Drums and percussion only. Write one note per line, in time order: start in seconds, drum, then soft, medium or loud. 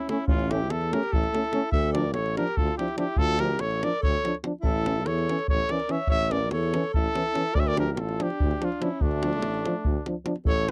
0.09 davul high medium
0.28 davul low loud
0.39 davul high soft
0.51 davul high medium
0.70 davul high medium
0.81 davul high soft
0.93 davul high medium
1.03 davul high soft
1.13 davul low medium
1.23 davul high soft
1.34 davul high medium
1.44 davul high soft
1.53 davul high medium
1.72 davul low medium
1.83 davul high soft
1.95 davul high medium
2.14 davul high medium
2.26 davul high soft
2.37 davul high medium
2.48 davul high soft
2.57 davul low medium
2.68 davul high soft
2.79 davul high medium
2.88 davul high soft
2.98 davul high medium
3.16 davul low medium
3.28 davul high soft
3.39 davul high medium
3.59 davul high medium
3.71 davul high soft
3.83 davul high medium
4.03 davul low medium
4.14 davul high soft
4.25 davul high medium
4.35 davul high soft
4.44 davul high medium
4.64 davul low medium
4.86 davul high medium
5.06 davul high medium
5.18 davul high soft
5.29 davul high medium
5.39 davul high soft
5.48 davul low medium
5.59 davul high soft
5.69 davul high medium
5.80 davul high soft
5.89 davul high medium
6.07 davul low medium
6.20 davul high soft
6.31 davul high medium
6.51 davul high medium
6.63 davul high soft
6.74 davul high medium
6.84 davul high soft
6.94 davul low medium
7.05 davul high soft
7.16 davul high medium
7.26 davul high soft
7.35 davul high medium
7.55 davul low medium
7.67 davul high soft
7.77 davul high medium
7.97 davul high medium
8.09 davul high soft
8.20 davul high medium
8.30 davul high soft
8.40 davul low medium
8.51 davul high soft
8.62 davul high medium
8.72 davul high soft
8.82 davul high medium
9.01 davul low medium
9.11 davul high soft
9.23 davul high medium
9.33 davul high soft
9.42 davul high medium
9.54 davul high soft
9.66 davul high medium
9.85 davul low medium
10.06 davul high medium
10.26 davul high medium
10.36 davul high soft
10.45 davul low medium